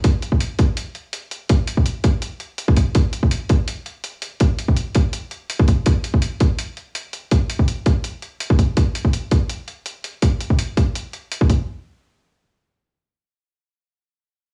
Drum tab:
HH |x-x-x-x-x-x-x-x-|x-x-x-x-x-x-x-x-|x-x-x-x-x-x-x-x-|x-x-x-x-x-x-x-x-|
BD |o--o--o---------|o--o--o------oo-|o--o--o---------|o--o--o------oo-|

HH |x-x-x-x-x-x-x-x-|x-x-x-x-x-x-x-x-|x-x-x-x-x-x-x-x-|x-x-x-x-x-x-x-x-|
BD |o--o--o---------|o--o--o------oo-|o--o--o---------|o--o--o------oo-|

HH |----------------|----------------|
BD |----------------|----------------|